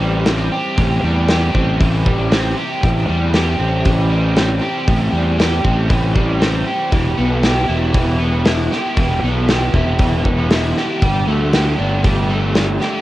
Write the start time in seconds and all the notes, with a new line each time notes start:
Already playing: A1 E3 C4 G4
0.01 G3
0.26 C4, snare, open hi-hat
0.52 G4
0.78 A1 A2, kick, open hi-hat
1.03 E2 G3
1.29 G4, snare, open hi-hat
1.54 A1 C4, kick
1.80 E3, kick, open hi-hat
2.06 G3, kick
2.31 C4, snare, open hi-hat
2.57 G4
2.83 A1 A2, kick, open hi-hat
3.08 E2 G3
3.34 G4, snare, open hi-hat
3.58 A1 C4
3.85 E3, kick, open hi-hat
4.10 G3
4.37 C4, snare, open hi-hat
4.62 G4
4.87 A1 A2, kick, open hi-hat
5.12 E2 G3
5.38 G4, snare, open hi-hat
5.64 A1 C4, kick
5.88 E3, kick, open hi-hat
6.14 G3, kick
6.40 C4, snare, open hi-hat
6.66 G4
6.91 E1 E3, kick, open hi-hat
7.17 B1 B3
7.42 G4, snare, open hi-hat
7.68 E1 E4
7.93 E3, kick, open hi-hat
8.19 B3
8.45 E4, snare, open hi-hat
8.72 G4, snare
8.97 E1 E3, kick, open hi-hat
9.23 B1 B3
9.49 G4, snare, open hi-hat
9.74 E1 E4, kick
9.99 E3, kick, open hi-hat
10.25 B3, kick
10.51 E4, snare, open hi-hat
10.77 G4, snare
11.02 G1 G3, kick, open hi-hat
11.27 D2 A3
11.53 G4, snare, open hi-hat
11.79 G1 D4
12.04 G3, kick, open hi-hat
12.30 A3
12.55 D4, snare, open hi-hat
12.80 G4, snare